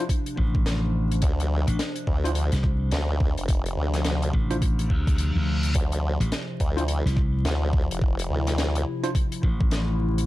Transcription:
0.00 10.26 C3 medium
0.00 10.26 F3 medium
0.00 5.75 D4 medium
0.09 kick loud
0.09 closed hi-hat medium
0.26 closed hi-hat soft
0.37 1.21 A1 loud
0.37 kick medium
0.55 kick medium
0.66 snare loud
0.66 closed hi-hat medium
1.11 closed hi-hat medium
1.22 1.65 D2 loud
1.22 kick loud
1.22 closed hi-hat medium
1.40 closed hi-hat soft
1.67 1.77 A1 loud
1.67 cross-stick medium
1.67 closed hi-hat medium
1.79 snare loud
1.79 closed hi-hat medium
1.96 closed hi-hat soft
2.07 2.50 D2 loud
2.07 kick medium
2.24 2.30 D4 medium
2.24 2.30 E4 medium
2.24 2.30 F4 medium
2.24 2.30 C5 loud
2.24 cross-stick soft
2.24 closed hi-hat medium
2.35 closed hi-hat medium
2.52 2.90 C2 medium
2.52 snare soft
2.52 closed hi-hat medium
2.63 kick loud
2.63 cross-stick medium
2.91 3.35 D2 loud
2.91 snare loud
2.91 closed hi-hat medium
3.20 kick loud
3.37 3.75 F1 medium
3.37 closed hi-hat medium
3.48 kick loud
3.48 closed hi-hat medium
3.66 closed hi-hat medium
3.77 4.32 D2 medium
3.94 cross-stick medium
3.94 snare soft
3.94 closed hi-hat medium
4.05 snare loud
4.05 closed hi-hat medium
4.22 closed hi-hat soft
4.33 4.88 A1 loud
4.33 kick medium
4.50 4.56 D4 medium
4.50 4.56 E4 medium
4.50 4.56 F4 medium
4.50 4.56 C5 loud
4.50 cross-stick soft
4.50 closed hi-hat soft
4.62 kick loud
4.62 closed hi-hat medium
4.62 reverse cymbal medium
4.79 closed hi-hat medium
4.90 5.33 D2 medium
4.90 kick medium
5.07 kick loud
5.07 closed hi-hat medium
5.18 closed hi-hat medium
5.36 5.73 D2 medium
5.63 closed hi-hat medium
5.75 6.18 D2 medium
5.75 10.26 E4 loud
5.75 kick loud
5.75 closed hi-hat loud
5.92 closed hi-hat medium
6.20 6.30 A1 medium
6.20 cross-stick medium
6.20 closed hi-hat medium
6.32 snare loud
6.32 closed hi-hat medium
6.60 7.03 D2 loud
6.60 kick medium
6.60 closed hi-hat medium
6.77 6.82 D4 medium
6.77 6.82 E4 medium
6.77 6.82 F4 medium
6.77 6.82 C5 loud
6.77 cross-stick soft
6.77 closed hi-hat medium
6.88 closed hi-hat medium
7.06 7.43 C2 medium
7.06 snare soft
7.06 closed hi-hat medium
7.16 kick loud
7.16 cross-stick medium
7.45 7.88 D2 medium
7.45 snare loud
7.45 closed hi-hat medium
7.73 kick loud
7.90 8.28 F1 medium
7.90 closed hi-hat medium
8.02 kick loud
8.19 closed hi-hat medium
8.30 8.85 D2 medium
8.47 cross-stick medium
8.47 snare soft
8.47 closed hi-hat medium
8.58 snare loud
8.58 closed hi-hat medium
8.75 closed hi-hat medium
9.03 9.09 D4 medium
9.03 9.09 E4 medium
9.03 9.09 F4 medium
9.03 9.09 C5 loud
9.03 cross-stick soft
9.03 closed hi-hat medium
9.15 kick loud
9.15 closed hi-hat medium
9.32 closed hi-hat medium
9.43 10.26 A1 loud
9.43 kick medium
9.61 kick loud
9.71 snare loud
9.71 closed hi-hat medium
10.18 closed hi-hat medium

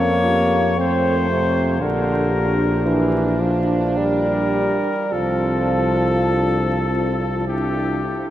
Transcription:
0.00 1.81 F2 medium
0.00 0.80 A#3 loud
0.00 0.27 C4 medium
0.00 0.26 F4 medium
0.00 0.77 C#5 loud
0.27 0.78 A#3 medium
0.27 0.78 G4 medium
0.77 1.80 A3 medium
0.77 1.28 C4 loud
0.77 1.78 A4 medium
0.77 1.78 C5 medium
1.30 1.82 C3 loud
1.79 4.82 A#1 medium
1.79 2.58 D3 loud
1.79 4.95 D4 loud
1.79 3.62 G4 medium
1.79 3.64 A#4 medium
2.85 3.42 E3 loud
3.40 3.99 F3 loud
3.94 5.13 G3 loud
3.94 5.13 G4 medium
3.94 5.14 A#4 medium
5.11 8.26 C2 medium
5.11 7.45 F3 loud
5.11 6.18 C4 medium
5.11 7.46 F4 medium
5.11 7.47 A4 medium
6.31 6.86 D4 medium
6.90 7.48 C4 medium
7.45 8.07 D4 medium
7.45 8.28 E4 medium
7.45 8.28 G4 medium
8.06 8.30 E4 medium

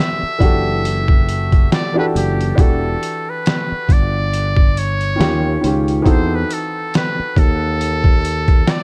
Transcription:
0.00 0.39 E3 medium
0.00 0.40 D4 medium
0.00 0.41 F#4 medium
0.00 0.43 G4 medium
0.00 0.44 A4 medium
0.00 1.73 E5 loud
0.23 muted fretless electric bass stroke soft
0.39 1.67 F#1 loud
0.39 1.54 E3 medium
0.39 1.55 D4 medium
0.39 1.56 F#4 medium
0.39 1.56 G4 medium
0.39 kick medium
0.39 closed hi-hat medium
0.44 1.57 A4 loud
0.85 closed hi-hat medium
1.08 kick loud
1.29 closed hi-hat medium
1.52 kick medium
1.52 closed hi-hat soft
1.72 1.96 D5 medium
1.72 snare loud
1.72 closed hi-hat medium
1.94 2.42 E3 medium
1.94 2.43 D4 medium
1.94 2.43 F#4 medium
1.94 2.44 G4 medium
1.99 2.45 A4 medium
1.99 2.06 B4 medium
2.15 2.51 F#1 medium
2.15 2.62 G4 medium
2.15 closed hi-hat medium
2.41 closed hi-hat soft
2.55 2.95 E1 medium
2.55 3.84 E3 medium
2.55 3.85 D4 medium
2.55 3.85 F#4 medium
2.55 3.86 G4 medium
2.55 kick loud
2.55 closed hi-hat medium
2.60 3.86 A4 medium
2.60 3.31 A4 medium
3.03 closed hi-hat medium
3.30 3.94 B4 medium
3.46 snare loud
3.46 closed hi-hat medium
3.72 muted fretless electric bass stroke soft
3.89 5.15 G1 medium
3.89 4.80 D5 loud
3.89 kick medium
3.89 closed hi-hat medium
4.33 closed hi-hat medium
4.56 kick loud
4.77 5.83 C#5 loud
4.77 closed hi-hat medium
5.01 closed hi-hat soft
5.16 5.56 D#2 medium
5.16 5.54 D#3 medium
5.16 5.55 C#4 medium
5.16 5.56 F4 medium
5.21 5.56 G4 medium
5.21 snare medium
5.21 closed hi-hat medium
5.61 6.00 C#2 medium
5.61 5.96 D#3 medium
5.61 5.97 C#4 medium
5.61 5.97 F4 medium
5.61 closed hi-hat medium
5.67 5.98 G4 medium
5.88 closed hi-hat soft
6.02 6.43 E2 medium
6.02 7.32 E3 medium
6.02 7.32 C4 medium
6.02 7.33 D#4 medium
6.02 7.34 F#4 medium
6.02 kick medium
6.02 closed hi-hat medium
6.07 7.34 A4 medium
6.07 6.36 C5 medium
6.35 6.55 B4 medium
6.51 6.95 A4 medium
6.51 closed hi-hat medium
6.94 7.40 B4 loud
6.94 snare medium
6.94 closed hi-hat medium
7.19 muted fretless electric bass stroke soft
7.36 8.63 D#2 loud
7.36 8.71 A4 loud
7.36 kick medium
7.36 closed hi-hat medium
7.81 closed hi-hat medium
8.04 kick medium
8.25 closed hi-hat medium
8.48 kick medium
8.48 closed hi-hat soft
8.67 8.83 D5 loud
8.67 snare loud
8.67 closed hi-hat medium

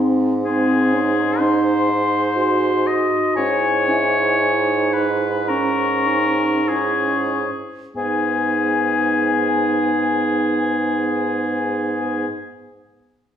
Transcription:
0.00 3.32 G#2 medium
0.00 0.39 C4 soft
0.00 0.40 D#4 soft
0.00 0.14 C6 soft
0.43 0.93 C4 medium
0.43 2.38 D#4 soft
0.43 1.40 G#4 medium
0.43 3.36 C6 soft
0.92 1.43 C#4 soft
1.39 1.88 D#4 soft
1.39 2.88 C5 medium
1.90 3.34 D#4 soft
2.36 3.36 F#4 soft
2.87 3.36 D#5 medium
3.35 7.48 G#2 medium
3.35 3.91 C#4 soft
3.35 5.51 E4 soft
3.35 4.95 C#5 medium
3.35 4.39 G#5 soft
3.89 4.42 E4 soft
4.40 5.49 D#4 soft
4.40 4.95 G#5 soft
4.93 5.50 B4 medium
4.93 5.51 B5 soft
5.48 6.53 C#4 soft
5.48 6.08 C#4 soft
5.48 6.70 A#4 medium
5.48 6.69 C#6 soft
6.07 6.69 D#4 soft
6.68 7.51 C#4 soft
6.68 7.51 E4 soft
6.68 7.80 G#4 soft
6.68 7.50 C#6 soft
7.95 12.27 G#2 soft
7.95 12.27 B3 soft
7.95 12.26 D#4 soft
7.95 12.28 G#4 soft
7.95 12.27 G#5 soft

